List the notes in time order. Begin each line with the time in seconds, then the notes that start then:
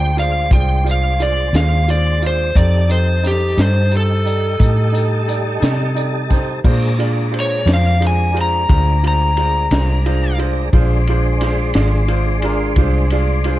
Already playing: D2 G#3 D4 C5 G5
0.17 F4 G#4 C5 D5 F5, closed hi-hat
0.51 C2 F4 G#4 C5 D5 G5, kick, closed hi-hat
0.84 F4 G#4 C5 D5, closed hi-hat
0.91 F5
1.20 F4 G#4 C5 D5, closed hi-hat
1.53 D#2 F4 G#4 C5 F5, snare, closed hi-hat
1.88 F4 G#4 C5 D5, closed hi-hat
2.22 F4 G#4 C5 D5, closed hi-hat
2.27 C5
2.54 F2 G3 D#4 G4 A4 C5 D5, kick, closed hi-hat
2.88 D#4 G4 A4 C5 D#5, closed hi-hat
3.23 D#4 G4 A4 C5, snare, closed hi-hat
3.27 G4
3.56 G2 D#4 G4 A4 C5, snare, closed hi-hat
3.61 C5
3.91 D#4 G4 A4 C5, closed hi-hat
3.97 A4
4.25 D#4 G4 A4 D5, closed hi-hat
4.59 A2 D#4 G4 A4 D#5, kick, closed hi-hat
4.92 D#4 G4 A4 D#5, closed hi-hat
5.28 D#4 G4 A4 D5, closed hi-hat
5.60 C3 D#4 G4 A4 D5, closed hi-hat
5.64 snare
5.95 D#4 G4 A4 D5, closed hi-hat
6.30 D#4 G4 A4 C5, kick, snare, closed hi-hat
6.64 A#2 G#3 D4 F4 G#4 A#4 C5, kick, crash
6.99 D4 F4 G#4 D5, ride
7.31 D4 F4 G#4 C5, ride
7.40 C#5
7.66 F2 D4 F4 G#4 C5, snare, ride
7.73 F5
8.00 D4 F4 G#4 C5, ride
8.07 G#5
8.34 D4 F4 G#4 C5, ride
8.41 A#5
8.68 D2 D4 F4 G#4 C5, kick, ride
9.03 D4 F4 G#4 C5, ride
9.08 A#5
9.37 D4 F4 G#4 C5, ride
9.71 C2 D4 F4 G#4 C5, snare, ride
10.06 D4 F4 G#4 C5, ride
10.38 D4 F4 G#4 C5, ride
10.73 A#1 G#3 D4 F4 G#4 C5, kick, ride
11.07 D4 F4 G#4 C5, ride
11.41 D4 F4 G#4 C5, snare, ride
11.74 G#1 D4 F4 G#4 D5, snare, ride
12.08 D4 F4 G#4 C5, ride
12.42 D4 F4 G#4 A#4, ride
12.76 C2 D4 F4 G#4 C5, kick, ride
13.10 D4 F4 G#4 D5, ride
13.44 D4 F4 G#4 C5, ride